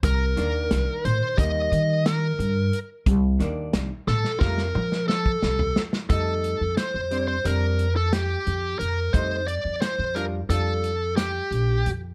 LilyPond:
<<
  \new Staff \with { instrumentName = "Lead electric guitar" } { \time 9/8 \key f \mixolydian \tempo 4. = 59 bes'4. c''8 ees''4 bes'4 r8 | r4. a'8 bes'4 a'4 r8 | a'4 c''8. c''16 bes'8. a'16 g'4 bes'8 | c''8 d''8 c''8 bes'8 a'4 g'4 r8 | }
  \new Staff \with { instrumentName = "Hollow-body jazz guitar" } { \time 9/8 \key f \mixolydian r8 <ees bes d'>4. <g bes ees'>4. r4 | r8 <ees bes d'>8 r4 <g a f'>8 r2 | <g a ees'>8 r4 <g c' d'>8 <g c' d'>8 r2 | <g a ees'>8 r4 <g d' f'>8 <g d' f'>8 r2 | }
  \new Staff \with { instrumentName = "Upright bass" } { \clef bass \time 9/8 \key f \mixolydian c,8 ees,8 c,16 r16 a,16 r16 ees,8 ees4 g,8 r8 | c,8 ees,8 c,16 r16 a,16 r16 f,8 f4 c,8 r8 | f,8. f,16 r16 f,8. f,4. f,8 f,8 | f,8. f,16 r16 f,8. f,4. bes,,8 f,8 | }
  \new DrumStaff \with { instrumentName = "Drums" } \drummode { \time 9/8 <hh bd>8 <hh sn>8 <hh sn>8 hh8 <hh bd>8 hh8 <hh sn>8 hh8 hh8 | <hh bd>8 <hh sn>8 <hh sn>8 sn16 sn16 <bd sn>16 sn16 toml16 sn16 sn16 bd16 sn16 tomfh16 sn16 sn16 | <hh bd>8 hh8 <hh sn>8 hh8 hh8 hh8 <hh sn>8 hh8 hh8 | <hh bd>8 hh8 <hh sn>8 hh8 hh8 hh8 <hh sn>8 hh8 hh8 | }
>>